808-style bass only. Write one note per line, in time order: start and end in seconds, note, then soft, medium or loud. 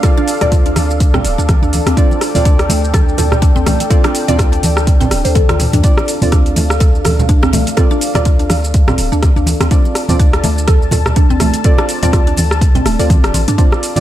0.41 0.73 D2 loud
0.76 1.21 D2 medium
1.25 1.35 D1 medium
1.38 1.57 D2 medium
1.62 1.81 D2 loud
1.86 1.95 D2 loud
2.35 2.66 D2 loud
2.69 3.14 D2 medium
3.18 3.51 D2 loud
3.56 3.64 D2 medium
3.67 3.77 C2 medium
4.29 4.60 D2 loud
4.63 5.08 D2 medium
5.11 5.22 D1 medium
5.25 5.44 D2 medium
5.49 5.68 D2 loud
5.73 5.82 D2 loud
6.22 6.53 D2 loud
6.56 7.01 D2 medium
7.05 7.38 D2 medium
7.43 7.51 D2 medium
7.53 7.64 C2 medium
8.15 8.47 D2 loud
8.50 8.95 D2 medium
8.98 9.09 D1 medium
9.12 9.31 D2 medium
9.36 9.55 D2 loud
9.60 9.69 D2 loud
10.09 10.40 D2 loud
10.44 10.89 D2 medium
10.92 11.25 D2 loud
11.30 11.38 D2 medium
11.41 11.51 C2 medium
12.03 12.34 D2 loud
12.38 12.82 D2 medium
12.86 12.97 D1 medium
13.00 13.25 D2 medium
13.24 13.32 D1 medium
13.34 13.45 A1 medium
13.48 13.56 G2 medium
13.97 14.00 D2 loud